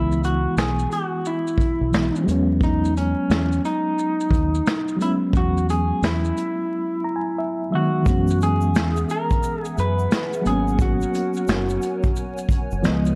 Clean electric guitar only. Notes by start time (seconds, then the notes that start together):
Already playing: E4
0.25 F#4
0.59 G#4
0.93 F#4
1.27 E4
2.64 D#4
2.97 C#4
3.65 D#4
5.02 E4
5.37 F#4
5.70 G#4
6.05 E4
7.75 F#4
8.43 G#4
9.11 A#4
9.63 G#4
9.80 B4
10.47 G#4
10.82 F#4